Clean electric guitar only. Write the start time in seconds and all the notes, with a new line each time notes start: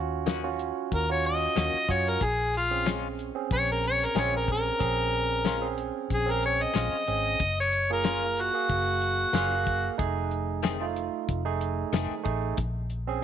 0.26 D#3 A#3 C#4 F#4
1.56 D#3 A#3 C#4 F#4
2.86 G#3 C#4 F4
4.15 G#3 C#4 F4
5.45 G#3 C#4 F4
6.74 G#3 C#4 F4
8.04 A#3 C#4 F4
9.33 A#3 C#4 F4
10.63 D#3 A3 C4 G#4
11.93 D#3 A3 C4 G#4